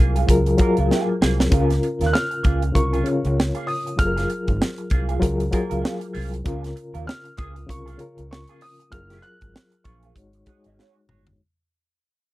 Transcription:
Already playing: F#3 A#3 F4 G#4 A#4 F6
0.00 C2 F4 G#4
0.16 A#3 F4 G#4, closed hi-hat
0.27 C#2 F#3 F4 G#4 A#4, muted clean electric guitar stroke, kick, closed hi-hat
0.46 muted clean electric guitar stroke, closed hi-hat
0.58 F#3 A#3 F4 G#4 A#4, kick, closed hi-hat
0.62 A#4
0.77 C#2 A#3 F4 A#4, closed hi-hat
0.91 A#3 F4 G#4, snare
1.08 muted clean electric guitar stroke
1.22 C2 A#3 F4 G#4, snare
1.40 muted clean electric guitar stroke, snare
1.50 C#2 C#3 A#3 C#4 F4 G#4 A#4, kick, closed hi-hat
1.70 muted clean electric guitar stroke, snare, closed hi-hat
1.83 muted clean electric guitar stroke, closed hi-hat
2.01 D#2 A#3 F4 A#4, snare, closed hi-hat
2.06 F#6
2.13 F6, snare
2.31 muted clean electric guitar stroke, closed hi-hat
2.43 C#2 A#3 F4 G#4, kick, closed hi-hat
2.62 muted clean electric guitar stroke, closed hi-hat
2.73 C2 C#3 C#4 F4 A#4 C#6, muted clean electric guitar stroke, kick, closed hi-hat
2.93 A#3 F4 G#4, closed hi-hat
3.04 C#3 C#4 F4 C#5, muted clean electric guitar stroke, closed hi-hat
3.25 C#2, muted clean electric guitar stroke, closed hi-hat
3.37 muted clean electric guitar stroke, snare
3.55 A#3 F4 G#4, closed hi-hat
3.67 D#6, muted clean electric guitar stroke, open hi-hat
3.86 muted clean electric guitar stroke, closed hi-hat
3.96 F#1 F#3 F4 G#4 A4 F6, muted clean electric guitar stroke, kick, closed hi-hat
4.07 A#4
4.16 A#3 F4 G#4, snare, closed hi-hat
4.30 muted clean electric guitar stroke, closed hi-hat
4.48 G#1, muted clean electric guitar stroke, kick, closed hi-hat
4.61 muted clean electric guitar stroke, snare
4.78 muted clean electric guitar stroke, closed hi-hat
4.90 C2 A#3 F4 G#4, kick, closed hi-hat
5.09 A#3 F4 G#4, closed hi-hat
5.20 C#2 F#3 F4 G#4 A#4, muted clean electric guitar stroke, kick, closed hi-hat
5.40 muted clean electric guitar stroke, closed hi-hat
5.51 F#3 A#3 F4 G#4 A#4, kick, closed hi-hat
5.70 C#2 A#3 F4 A#4, closed hi-hat
5.82 A#3 F4 G#4, snare
6.01 muted clean electric guitar stroke, closed hi-hat
6.13 C2 A#3 F4 G#4, open hi-hat
6.32 muted clean electric guitar stroke, closed hi-hat
6.44 C#2 C#3 A#3 C#4 F4 G#4 A#4, kick, closed hi-hat
6.63 muted clean electric guitar stroke, snare, closed hi-hat
6.75 muted clean electric guitar stroke, closed hi-hat
6.94 D#2 A#3 F4 A#4, closed hi-hat
7.06 F6, muted clean electric guitar stroke, snare
7.24 muted clean electric guitar stroke, closed hi-hat
7.37 C#2 A#3 F4 G#4 D#6, kick, closed hi-hat
7.55 muted clean electric guitar stroke, closed hi-hat
7.67 C2 C#3 C#4 F4 A#4 C#6, muted clean electric guitar stroke, kick, closed hi-hat
7.86 A#3 F4 G#4, closed hi-hat
7.97 C#3 C#4 F4 A#4, muted clean electric guitar stroke, closed hi-hat
8.18 C#2, muted clean electric guitar stroke, closed hi-hat
8.31 C#6, muted clean electric guitar stroke, snare
8.47 A#3 F4 G#4, closed hi-hat
8.61 D#6, muted clean electric guitar stroke, open hi-hat
8.80 muted clean electric guitar stroke, closed hi-hat
8.90 F#1 F#3 F4 G#4 A#4 F6, muted clean electric guitar stroke, kick, closed hi-hat
9.10 A#3 F4 G#4, snare, closed hi-hat
9.22 F#6, muted clean electric guitar stroke, closed hi-hat
9.41 G#1, muted clean electric guitar stroke, kick, closed hi-hat
9.54 muted clean electric guitar stroke, snare
9.72 muted clean electric guitar stroke, closed hi-hat
9.84 A#1 A#3 F4 G#4 C#6, kick, closed hi-hat
10.03 A#3 F4 G#4, closed hi-hat
10.15 G#1 G#3 D#4 F#4 C#5, muted clean electric guitar stroke, kick, closed hi-hat
10.33 muted clean electric guitar stroke, closed hi-hat
10.46 G#3 D#4 F#4 G#4 C#5 D#5, kick, closed hi-hat
10.64 G#1 F#4 G#4 D#5, closed hi-hat
10.79 F#4 G#4 C#5, snare
10.97 muted clean electric guitar stroke
11.09 G1 F#4 G#4 C#5, mid tom
11.27 muted clean electric guitar stroke, floor tom

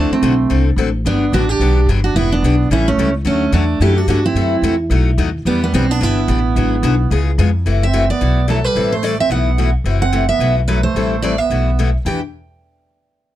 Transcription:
Already playing: D3 A3 C4 D4 F#4 A4
0.11 A3 C4, muted upright bass stroke
0.22 B1 D3 A3 C4 F#4 A4
0.50 C2 D3 A3 C4 F#4 A4
0.76 A1 D3 A3 C4 F#4 A4
1.05 G1 D3 F#3 B3 D4 G4
1.32 A1 D3 F#3 B3 D4 F#4 G4
1.37 D4
1.49 D4 G4
1.60 B1 D3 F#3 B3 D4 G4
1.86 G1 D3 F#3 B3 D4 G4
2.04 D4 F#4
2.14 E1 E3 B3 D4 E4 G4
2.32 B3 D4
2.42 B1 E3 B3 D4 G4
2.70 A1 E3 G3 C#4 E4 A4
2.88 A3 C#4
2.98 C#2 E3 G3 C#4 E4 A4
3.25 D2 D3 F#3 A3 C#4 F#4
3.52 E2 D3 F#3 A3 C#4 D4 F#4
3.80 F#2 D3 F#3 A3 C#4 E4 F#4 G4
3.96 D4 F#4
4.07 G2 D3 F#3 A3 C#4 D4 F#4
4.25 C4 E4
4.34 F#2 C3 E3 A3 E4 F#4
4.62 E2 C3 E3 A3 E4 F#4
4.90 B1 B2 F#3 A3 D#4 F#4
5.18 D#2 B2 F#3 A3 D#4 F#4
5.45 E2 E3 G3 B3 D4 G4
5.63 G3 B3
5.73 B1 E3 G3 B3 C4 D4 G4
5.89 B3 D4
6.00 G1 E3 B3 D4 E4 G4
6.28 A1 E3 B3 D4 G4
6.56 G#1 D3 F#3 B3 F#4 G#4
6.83 B1 D3 F#3 B3 F#4 G#4
7.11 C#2 C#3 G#3 B3 F4 G#4
7.38 F2 C#3 G#3 B3 F4 G#4
7.66 F#1 C3 E3 A3 E4 F#4
7.83 C4 E5
7.93 C3 E3 A3 E4 F#4
8.10 B3 D5
8.21 B1 B2 E3 A3 E4 F#4
8.48 B2 E3 F#3 A3 E4 F#4 A4
8.64 G3 B4
8.76 A1 E3 G3 C4 E4 A4
8.92 A3 C5
9.03 E3 G3 A3 C4 E4 A4 D5
9.19 C4 E5
9.30 B1 B2 E3 A3 B3 E4 F#4 F#5
9.58 B2 E3 A3 E4 F#4
9.84 F#1 C3 E3 A3 E4 F#4
10.01 C4 F#5
10.12 C3 E3 A3 E4 F#4
10.28 B3 E5
10.39 B1 B2 E3 A3 E4 F#4
10.68 B2 E3 F#3 A3 E4 F#4 B4
10.83 A3 C5
10.95 A1 E3 G3 C4 E4 A4
11.22 E3 G3 A3 C4 E4 A4 D5
11.38 B3 E5
11.50 B1 B2 E3 A3 E4 F#4
11.79 B2 E3 A3 E4 F#4
12.05 E2 E3 B3 D4 G4 G5

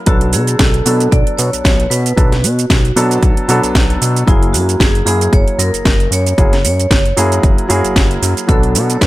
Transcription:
0.06 B1 F#3 B3 D4 F#4 A4, kick, closed hi-hat, shaker
0.21 closed hi-hat
0.33 B2 G#4, open hi-hat, shaker
0.47 closed hi-hat, shaker
0.59 B1 A4, kick, snare, closed hi-hat, shaker
0.74 closed hi-hat
0.86 B2 F#3 B3 D4 A4, open hi-hat, shaker
1.00 closed hi-hat, shaker
1.12 B1 D5, kick, closed hi-hat, shaker
1.27 closed hi-hat
1.38 B2 C#5, open hi-hat, shaker
1.53 B1, closed hi-hat, shaker
1.64 B1 C#5, kick, snare, closed hi-hat, shaker
1.80 closed hi-hat
1.90 B2 B4, open hi-hat, shaker
2.06 closed hi-hat, shaker
2.16 B1 F#3 B3 D4 A4, kick, closed hi-hat, shaker
2.32 snare, closed hi-hat
2.43 B2 F#4, open hi-hat, shaker
2.59 closed hi-hat, shaker
2.70 B1, kick, snare, closed hi-hat, shaker
2.85 closed hi-hat
2.96 B2 F#3 B3 D4 A4, open hi-hat, shaker
3.11 closed hi-hat, shaker
3.23 B1, kick, closed hi-hat, shaker
3.37 closed hi-hat
3.48 B2 F#3 B3 D4 A4, open hi-hat, shaker
3.63 B1, closed hi-hat, shaker
3.75 B1, kick, snare, closed hi-hat, shaker
3.90 closed hi-hat
4.02 B2, open hi-hat, shaker
4.16 closed hi-hat, shaker
4.26 F#1 F#3 A#3 E4 G#4, kick, closed hi-hat, shaker
4.43 closed hi-hat
4.53 F#2 F#4, open hi-hat, shaker
4.69 closed hi-hat, shaker
4.80 F#1 G#4, kick, snare, closed hi-hat, shaker
4.95 closed hi-hat
5.05 F#2 F#3 A#3 E4 G#4, open hi-hat, shaker
5.21 closed hi-hat, shaker
5.33 F#1 C#5, kick, closed hi-hat, shaker
5.48 closed hi-hat
5.59 F#2 A#4, open hi-hat, shaker
5.73 F#1, closed hi-hat, shaker
5.85 F#1 A#4, kick, snare, closed hi-hat, shaker
6.00 closed hi-hat
6.11 F#2 C#5, open hi-hat, shaker
6.26 closed hi-hat, shaker
6.38 F#1 F#3 A#3 E4 G#4, kick, closed hi-hat, shaker
6.53 snare, closed hi-hat
6.64 F#2 C#5, open hi-hat, shaker
6.80 closed hi-hat, shaker
6.91 F#1, kick, snare, closed hi-hat, shaker
7.06 closed hi-hat
7.17 F#2 F#3 A#3 E4 G#4, open hi-hat, shaker
7.32 closed hi-hat, shaker
7.43 F#1, kick, closed hi-hat, shaker
7.58 closed hi-hat
7.69 F#2 F#3 A#3 E4 G#4, open hi-hat, shaker
7.85 F#1, closed hi-hat, shaker
7.96 F#1, kick, snare, closed hi-hat, shaker
8.11 closed hi-hat
8.22 F#2, open hi-hat, shaker
8.37 closed hi-hat, shaker
8.47 B1 F#3 B3 D4 A4, kick, closed hi-hat, shaker
8.63 closed hi-hat
8.75 B2, open hi-hat, shaker
8.90 closed hi-hat, shaker
8.95 C#5
9.01 B1 B4, kick, snare, closed hi-hat, shaker

